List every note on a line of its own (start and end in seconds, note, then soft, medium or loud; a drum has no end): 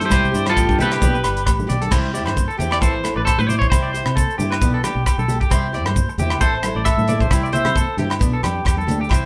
0.00 0.11 A4 medium
0.00 closed hi-hat soft
0.00 high conga medium
0.00 maracas soft
0.05 0.45 G4 medium
0.05 0.45 C5 loud
0.09 0.22 C2 loud
0.09 0.25 G3 medium
0.09 0.25 C4 medium
0.09 0.26 E4 medium
0.09 0.26 G4 medium
0.09 0.34 C5 medium
0.09 kick medium
0.09 cross-stick medium
0.09 closed hi-hat soft
0.09 low agogo medium
0.09 maracas loud
0.24 0.33 C2 medium
0.24 maracas soft
0.32 0.54 G2 medium
0.32 0.49 C4 soft
0.32 0.48 E4 soft
0.32 0.47 G4 medium
0.32 closed hi-hat soft
0.32 maracas medium
0.36 0.47 D5 medium
0.46 0.79 F4 medium
0.46 0.80 A4 medium
0.46 0.57 C5 medium
0.46 cross-stick medium
0.46 closed hi-hat soft
0.46 high conga medium
0.46 low agogo medium
0.57 0.67 A1 medium
0.57 0.78 G4 medium
0.57 kick medium
0.57 closed hi-hat soft
0.57 maracas loud
0.69 0.78 G2 medium
0.69 kick medium
0.69 maracas soft
0.78 0.99 C2 loud
0.78 0.95 C4 soft
0.78 0.94 E4 medium
0.78 0.93 G4 medium
0.78 1.66 G4 medium
0.78 0.91 A4 medium
0.78 1.67 B4 medium
0.78 closed hi-hat soft
0.78 high conga medium
0.78 low conga medium
0.78 maracas medium
0.91 1.13 G4 medium
0.91 cross-stick medium
0.91 closed hi-hat soft
0.91 low agogo medium
0.91 maracas soft
1.00 1.21 B1 loud
1.00 1.15 B3 medium
1.00 1.16 D4 medium
1.00 1.16 G4 medium
1.00 kick medium
1.00 closed hi-hat soft
1.00 high conga medium
1.00 low conga medium
1.00 maracas medium
1.14 1.23 B4 medium
1.14 maracas soft
1.23 1.45 G1 medium
1.23 1.39 D4 soft
1.23 1.38 G4 soft
1.23 1.46 B4 medium
1.23 cross-stick medium
1.23 closed hi-hat medium
1.23 low agogo medium
1.23 maracas medium
1.37 closed hi-hat medium
1.37 maracas soft
1.46 1.67 A1 medium
1.46 muted clean electric guitar stroke medium
1.46 kick medium
1.46 cross-stick medium
1.46 closed hi-hat medium
1.46 low agogo medium
1.46 maracas medium
1.59 high conga medium
1.59 maracas soft
1.67 1.90 B1 medium
1.67 1.84 D4 medium
1.67 1.82 G4 medium
1.67 1.81 D5 medium
1.67 closed hi-hat medium
1.67 low conga medium
1.67 maracas medium
1.82 1.91 A4 medium
1.82 closed hi-hat medium
1.82 high conga medium
1.91 2.27 C2 medium
1.91 2.06 G3 medium
1.91 2.06 C4 medium
1.91 2.06 E4 medium
1.91 2.06 G4 medium
1.91 2.13 C5 medium
1.91 kick medium
1.91 cross-stick medium
1.91 crash medium
1.91 low agogo medium
1.91 maracas medium
2.13 2.29 C4 soft
2.13 2.29 E4 medium
2.13 2.28 G4 medium
2.13 2.25 D5 medium
2.13 closed hi-hat soft
2.13 maracas medium
2.25 2.46 G2 medium
2.25 2.47 C5 medium
2.25 cross-stick medium
2.25 high conga medium
2.25 low agogo medium
2.36 kick medium
2.36 low conga medium
2.36 maracas medium
2.48 2.58 A4 medium
2.48 maracas soft
2.57 2.82 E2 medium
2.57 2.74 C4 soft
2.57 2.74 E4 medium
2.57 2.73 G4 medium
2.57 2.80 G4 medium
2.57 closed hi-hat soft
2.57 low conga medium
2.57 maracas medium
2.71 2.82 D5 medium
2.71 cross-stick medium
2.71 low agogo medium
2.81 3.12 A1 loud
2.81 2.96 E3 medium
2.81 2.96 C4 medium
2.81 2.96 E4 medium
2.81 2.93 A4 medium
2.81 2.97 A4 medium
2.81 3.14 C5 medium
2.81 kick medium
2.81 maracas medium
2.92 3.14 C5 medium
3.03 3.19 C4 soft
3.03 3.19 E4 soft
3.03 3.18 A4 soft
3.03 cross-stick medium
3.03 closed hi-hat soft
3.03 high conga medium
3.03 low agogo medium
3.03 maracas medium
3.16 3.36 A1 medium
3.16 3.25 B4 medium
3.16 3.25 D5 medium
3.25 3.39 A4 medium
3.25 3.48 C5 medium
3.25 kick medium
3.25 cross-stick medium
3.25 low agogo medium
3.25 maracas medium
3.38 3.63 A2 medium
3.38 3.47 B4 medium
3.38 high conga medium
3.38 maracas soft
3.47 3.64 E4 soft
3.47 3.58 C5 medium
3.47 3.60 D5 medium
3.47 closed hi-hat soft
3.47 high conga medium
3.47 low conga medium
3.47 maracas medium
3.51 3.65 C4 soft
3.59 3.70 B1 medium
3.59 3.82 C5 medium
3.59 3.70 C#5 medium
3.59 kick medium
3.59 maracas soft
3.70 4.02 C2 loud
3.70 3.86 C4 medium
3.70 3.86 E4 medium
3.70 3.87 G4 medium
3.70 4.57 C5 medium
3.70 kick medium
3.70 cross-stick medium
3.70 low agogo medium
3.70 maracas loud
3.82 3.92 D5 medium
3.93 4.10 E4 soft
3.93 4.08 G4 soft
3.93 4.15 C5 medium
3.93 closed hi-hat soft
3.93 maracas medium
4.06 4.26 C3 medium
4.06 cross-stick medium
4.06 low agogo medium
4.16 4.38 A4 medium
4.16 kick medium
4.16 low conga medium
4.16 maracas medium
4.30 maracas soft
4.38 4.63 G2 medium
4.38 4.55 E4 medium
4.38 4.50 G4 medium
4.38 4.53 G4 medium
4.38 closed hi-hat soft
4.38 low conga medium
4.38 maracas medium
4.51 4.72 B4 medium
4.51 cross-stick medium
4.51 low agogo medium
4.61 4.81 B1 loud
4.61 4.76 B3 medium
4.61 4.76 D4 medium
4.61 4.77 G4 medium
4.61 kick medium
4.61 maracas medium
4.74 4.84 A4 medium
4.83 5.00 D4 soft
4.83 4.98 G4 medium
4.83 5.05 G4 medium
4.83 cross-stick medium
4.83 closed hi-hat medium
4.83 high conga medium
4.83 low agogo medium
4.83 maracas medium
4.95 5.05 B1 medium
5.06 5.18 G4 medium
5.06 kick medium
5.06 cross-stick medium
5.06 low agogo medium
5.06 maracas medium
5.18 5.38 B1 medium
5.18 5.40 A4 medium
5.18 high conga medium
5.18 maracas soft
5.28 5.43 G4 medium
5.28 closed hi-hat medium
5.28 high conga medium
5.28 low conga medium
5.28 maracas medium
5.40 5.51 G4 medium
5.40 kick medium
5.40 maracas soft
5.50 5.84 C2 loud
5.50 5.65 G3 medium
5.50 5.66 C4 medium
5.50 5.66 E4 medium
5.50 5.66 G4 medium
5.50 5.72 C5 medium
5.50 kick medium
5.50 cross-stick medium
5.50 low agogo medium
5.50 maracas medium
5.73 5.89 C4 soft
5.73 5.88 E4 medium
5.73 5.88 G4 medium
5.73 5.86 D5 medium
5.73 closed hi-hat soft
5.84 6.05 G2 medium
5.84 6.08 C5 medium
5.84 cross-stick medium
5.84 high conga medium
5.84 low agogo medium
5.96 kick medium
5.96 low conga medium
5.96 maracas medium
6.09 muted clean electric guitar stroke medium
6.09 maracas soft
6.18 6.41 E2 medium
6.18 6.34 C4 medium
6.18 6.34 E4 medium
6.18 6.33 G4 medium
6.18 6.41 G4 medium
6.18 closed hi-hat soft
6.18 low conga medium
6.18 maracas medium
6.30 cross-stick medium
6.30 low agogo medium
6.41 6.71 A1 loud
6.41 6.56 C4 medium
6.41 6.56 E4 medium
6.41 6.53 A4 medium
6.41 6.57 A4 medium
6.41 6.83 C5 medium
6.41 kick medium
6.41 maracas medium
6.54 6.75 C5 medium
6.63 6.78 A4 soft
6.63 cross-stick medium
6.63 closed hi-hat soft
6.63 high conga medium
6.63 low agogo medium
6.63 maracas medium
6.67 6.80 E4 soft
6.75 6.95 A1 medium
6.75 6.86 D5 medium
6.85 7.08 A4 medium
6.85 7.49 E5 loud
6.85 kick medium
6.85 cross-stick medium
6.85 low agogo medium
6.85 maracas loud
6.97 7.22 A2 medium
6.97 high conga medium
6.97 maracas soft
7.08 7.23 A4 medium
7.08 7.20 D5 medium
7.08 closed hi-hat soft
7.08 high conga medium
7.08 low conga medium
7.08 maracas medium
7.12 7.25 E4 soft
7.20 7.30 B1 medium
7.20 7.42 C5 medium
7.20 kick medium
7.20 maracas soft
7.30 7.61 C2 loud
7.30 7.45 G3 medium
7.30 7.45 C4 medium
7.30 7.46 E4 medium
7.30 7.46 G4 medium
7.30 kick medium
7.30 cross-stick medium
7.30 low agogo medium
7.30 maracas loud
7.43 7.53 D5 medium
7.43 maracas soft
7.52 7.69 C4 soft
7.52 7.68 E4 medium
7.52 7.67 G4 medium
7.52 7.95 C5 medium
7.52 7.75 E5 medium
7.52 closed hi-hat soft
7.52 low conga medium
7.52 maracas medium
7.65 7.85 C3 medium
7.65 cross-stick medium
7.65 high conga medium
7.65 low agogo medium
7.65 maracas soft
7.75 7.98 A4 medium
7.75 kick medium
7.75 low conga medium
7.75 maracas medium
7.97 8.22 G2 medium
7.97 8.14 C4 soft
7.97 8.13 E4 soft
7.97 8.12 G4 medium
7.97 8.10 G4 medium
7.97 closed hi-hat soft
7.97 low conga medium
8.10 muted clean electric guitar stroke medium
8.10 cross-stick medium
8.10 low agogo medium
8.10 maracas soft
8.19 8.40 B1 medium
8.19 8.34 B3 medium
8.19 8.35 D4 medium
8.19 muted steel-string acoustic guitar stroke medium
8.19 kick medium
8.19 maracas medium
8.33 8.43 A4 medium
8.43 8.63 F2 medium
8.43 8.58 D4 soft
8.43 8.65 G4 medium
8.43 cross-stick medium
8.43 closed hi-hat medium
8.43 high conga medium
8.43 low agogo medium
8.43 maracas medium
8.65 8.86 E2 medium
8.65 8.78 G4 medium
8.65 kick medium
8.65 cross-stick medium
8.65 low agogo medium
8.65 maracas medium
8.77 8.99 A4 medium
8.77 high conga medium
8.77 maracas soft
8.87 9.08 D2 medium
8.87 9.04 D4 soft
8.87 9.02 G4 medium
8.87 closed hi-hat medium
8.87 high conga medium
8.87 low conga medium
8.87 maracas medium
9.01 9.10 G4 medium
9.01 maracas soft
9.09 9.26 C2 medium
9.09 9.24 C4 medium
9.09 9.25 E4 medium
9.09 9.25 G4 medium
9.09 9.26 C5 medium
9.09 muted steel-string acoustic guitar stroke medium
9.09 kick medium
9.09 cross-stick medium
9.09 low agogo medium
9.14 maracas medium